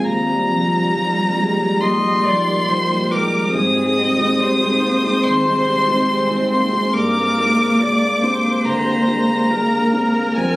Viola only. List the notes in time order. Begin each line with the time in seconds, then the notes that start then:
1.81 D#5
2.25 D5
2.68 C5
3.12 A#4
3.55 G#4
3.97 D#5
4.40 C5
6.94 A#4
7.79 D5
8.22 C5
9.51 A#4